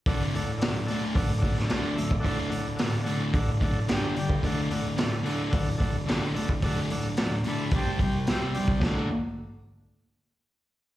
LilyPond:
<<
  \new Staff \with { instrumentName = "Transistor combo organ" } { \time 4/4 \key d \mixolydian \tempo 4 = 110 <a' d'' fis''>8 <a' d'' fis''>8 <a' d'' fis''>8 <a' d'' fis''>8 <a' d'' fis''>8 <a' d'' fis''>8 <a' d'' fis''>8 <a' d'' e''>8 | <a' d'' fis''>8 <a' d'' fis''>8 <a' d'' fis''>8 <a' d'' fis''>8 <a' d'' fis''>8 <a' d'' fis''>8 <g' d'' g''>8 <g' d'' g''>8 | <a' d'' fis''>8 <a' d'' fis''>8 <a' d'' e''>8 <a' d'' fis''>8 <a' d'' fis''>8 <a' d'' fis''>8 <a' d'' fis''>8 <a' d'' fis''>8 | <a' d'' fis''>8 <a' d'' fis''>8 <a' d'' fis''>8 <a' d'' a'' b''>8 <g' c'' g'' a''>8 <g' c'' g''>8 <g' c'' e'' g''>8 <g' c'' d'' g''>8 |
<a' d'' fis''>8 r2. r8 | }
  \new Staff \with { instrumentName = "Distorted electric guitar" } { \clef bass \time 4/4 \key d \mixolydian <d, a, d>8 <d, a,>8 <d, a,>8 <d, a, d>8 <d, a,>8 <d, a,>8 <d, a, d>8 <d, a,>8 | <d, a, d>8 <d, a,>8 <d, a,>8 <d, a, d>8 <d, a,>8 <d, a,>8 <g, d g>8 <g, d>8 | <d, a, d>8 <d, a,>8 <d, a,>8 <d, a, d>8 <d, a,>8 <d, a,>8 <d, a, d>8 <d, a,>8 | <d, a, d>8 <d, a,>8 <d, a,>8 <d, a, d>8 <c g c'>8 <c g>8 <c g c'>8 <c g>8 |
<d, a, d>8 r2. r8 | }
  \new DrumStaff \with { instrumentName = "Drums" } \drummode { \time 4/4 <hho bd>8 hho8 <hho sn>8 hho8 <hho bd>8 <hho bd>16 sn16 <hho sn>8 hho16 bd16 | <hho bd>8 hho8 <hho sn>8 hho8 <hho bd>8 <hho bd>8 <hho sn>8 hho16 bd16 | <hho bd>8 hho8 <hho sn>8 hho8 <hho bd>8 <hho bd>8 <hho sn>8 hho16 bd16 | <hho bd>8 hho8 <hho sn>8 hho8 <hho bd>8 <hho bd>8 <hho sn>8 hho16 bd16 |
<bd sn>4 r4 r4 r4 | }
>>